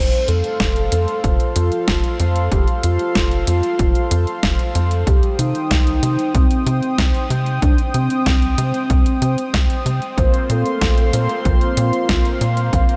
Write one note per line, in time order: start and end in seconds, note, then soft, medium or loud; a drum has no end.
0.00 0.11 F1 medium
0.00 5.03 A4 medium
0.00 0.30 C5 loud
0.00 12.96 C5 medium
0.00 5.03 F5 medium
0.00 5.03 C6 medium
0.12 closed hi-hat soft
0.28 0.43 F2 medium
0.28 1.25 A4 loud
0.28 closed hi-hat medium
0.44 closed hi-hat soft
0.60 0.89 F1 medium
0.60 kick loud
0.60 snare loud
0.60 closed hi-hat medium
0.76 closed hi-hat soft
0.92 1.07 F2 medium
0.92 closed hi-hat medium
1.08 closed hi-hat soft
1.24 1.39 F1 medium
1.24 1.55 F4 medium
1.24 kick loud
1.24 closed hi-hat medium
1.40 closed hi-hat soft
1.56 1.71 F2 loud
1.56 2.16 F4 medium
1.56 closed hi-hat medium
1.72 closed hi-hat soft
1.88 2.02 F1 loud
1.88 kick loud
1.88 snare loud
1.88 closed hi-hat medium
2.04 closed hi-hat soft
2.20 2.49 F2 medium
2.20 closed hi-hat medium
2.36 closed hi-hat soft
2.52 2.66 F1 loud
2.52 2.66 G4 loud
2.52 kick loud
2.52 closed hi-hat medium
2.68 closed hi-hat soft
2.83 2.98 F2 medium
2.83 3.43 F4 loud
2.83 closed hi-hat medium
2.99 closed hi-hat soft
3.15 3.45 F1 medium
3.15 kick loud
3.15 snare loud
3.15 closed hi-hat medium
3.31 closed hi-hat soft
3.47 3.62 F2 medium
3.47 4.71 F4 loud
3.47 closed hi-hat medium
3.63 closed hi-hat soft
3.79 3.94 F1 medium
3.79 kick loud
3.79 closed hi-hat medium
3.95 closed hi-hat soft
4.11 4.26 F2 loud
4.11 closed hi-hat medium
4.27 closed hi-hat soft
4.43 4.58 F1 loud
4.43 kick loud
4.43 snare loud
4.43 closed hi-hat medium
4.59 closed hi-hat soft
4.75 5.04 F2 medium
4.75 closed hi-hat loud
4.91 closed hi-hat soft
5.07 5.22 C2 loud
5.07 5.40 G4 loud
5.07 10.14 G5 medium
5.07 10.14 D#6 medium
5.07 kick loud
5.07 closed hi-hat medium
5.23 closed hi-hat soft
5.39 5.54 C3 medium
5.39 6.36 D#4 loud
5.39 closed hi-hat medium
5.55 closed hi-hat soft
5.71 6.00 C2 medium
5.71 kick loud
5.71 snare loud
5.71 closed hi-hat medium
5.87 closed hi-hat soft
6.03 6.17 C3 medium
6.03 closed hi-hat medium
6.19 closed hi-hat soft
6.35 6.49 C2 medium
6.35 6.66 C4 medium
6.35 kick loud
6.35 closed hi-hat medium
6.51 closed hi-hat soft
6.66 6.81 C3 loud
6.66 7.26 C4 medium
6.66 closed hi-hat medium
6.83 closed hi-hat soft
6.98 7.13 C2 loud
6.98 kick loud
6.98 snare loud
6.98 closed hi-hat medium
7.14 closed hi-hat soft
7.30 7.60 C3 medium
7.30 closed hi-hat medium
7.46 closed hi-hat soft
7.62 7.77 C2 loud
7.62 7.76 D4 loud
7.62 kick loud
7.62 closed hi-hat medium
7.78 closed hi-hat soft
7.94 8.09 C3 medium
7.94 8.54 C4 loud
7.94 closed hi-hat medium
8.10 closed hi-hat soft
8.26 8.55 C2 medium
8.26 kick loud
8.26 snare loud
8.26 closed hi-hat medium
8.42 closed hi-hat soft
8.58 8.73 C3 medium
8.58 9.82 C4 loud
8.58 closed hi-hat medium
8.74 closed hi-hat soft
8.90 9.05 C2 medium
8.90 kick loud
8.90 closed hi-hat medium
9.06 closed hi-hat soft
9.22 9.36 C3 medium
9.22 closed hi-hat medium
9.38 closed hi-hat soft
9.54 9.68 C2 loud
9.54 kick loud
9.54 snare loud
9.54 closed hi-hat medium
9.70 closed hi-hat soft
9.86 10.00 C3 medium
9.86 closed hi-hat medium
10.02 closed hi-hat soft
10.18 10.32 A#1 loud
10.18 11.10 A#3 medium
10.18 12.96 A#3 medium
10.18 11.10 C4 medium
10.18 11.10 F4 medium
10.18 10.32 C5 loud
10.18 11.10 C5 medium
10.18 12.96 F5 medium
10.18 12.70 C6 medium
10.18 kick loud
10.18 closed hi-hat medium
10.34 closed hi-hat soft
10.49 10.64 A#2 medium
10.49 11.46 A4 loud
10.49 closed hi-hat medium
10.66 closed hi-hat soft
10.81 11.11 A#1 medium
10.81 kick loud
10.81 snare loud
10.81 closed hi-hat medium
10.98 closed hi-hat soft
11.13 11.28 A#2 medium
11.13 12.69 A#3 loud
11.13 12.69 C4 medium
11.13 12.69 F4 medium
11.13 12.69 C5 loud
11.13 closed hi-hat medium
11.29 closed hi-hat soft
11.45 11.60 A#1 medium
11.45 11.76 F4 medium
11.45 kick loud
11.45 closed hi-hat medium
11.61 closed hi-hat soft
11.77 11.92 A#2 loud
11.77 12.37 F4 medium
11.77 closed hi-hat medium
11.93 closed hi-hat soft
12.09 12.24 A#1 loud
12.09 kick loud
12.09 snare loud
12.09 closed hi-hat medium
12.25 closed hi-hat soft
12.41 12.70 A#2 loud
12.41 closed hi-hat medium
12.57 closed hi-hat soft
12.73 12.88 A#1 loud
12.73 12.96 A#3 medium
12.73 12.96 C4 medium
12.73 12.96 F4 medium
12.73 12.96 C5 medium
12.73 12.96 F5 loud
12.73 12.96 D6 medium
12.73 kick loud
12.73 closed hi-hat medium
12.89 closed hi-hat soft